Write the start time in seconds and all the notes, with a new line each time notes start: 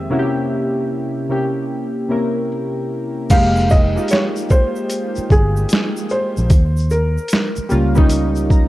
Already playing: F2 D#3 G#3 A#3 C4 G4 E5
0.10 C3 A#3 C#4 E4 F#4
0.19 G4
1.29 C3 A#3 C#4 E4 G4
2.09 C3 A#3 C#4 E4 A#4
3.30 F1 G#3 A#3 D#4 G4 F5, kick, closed hi-hat, crash, shaker
3.56 shaker
3.59 shaker
3.70 D#5, kick, shaker
3.95 G#3 A#3 D#4 F4, shaker
4.08 closed hi-hat, shaker
4.10 C#5, snare, shaker
4.36 shaker
4.49 C5, kick, shaker
4.76 shaker
4.90 closed hi-hat, shaker
5.15 shaker
5.17 muted fingered electric bass stroke, shaker
5.30 G1 G#4, kick, shaker
5.57 shaker
5.69 snare, closed hi-hat, shaker
5.96 shaker
6.09 C5, shaker
6.37 A#1, shaker
6.50 D#2, kick, closed hi-hat, shaker
6.77 shaker
6.78 shaker
6.90 A#4, shaker
7.17 shaker
7.28 closed hi-hat, shaker
7.30 snare, shaker
7.56 muted fingered electric bass stroke, shaker
7.69 C#2 G3 A#3 C#4 F4, shaker
7.95 G3 A#3 C#4 D#4, kick, shaker
8.10 closed hi-hat, shaker
8.35 shaker
8.37 shaker
8.50 A#5, kick, shaker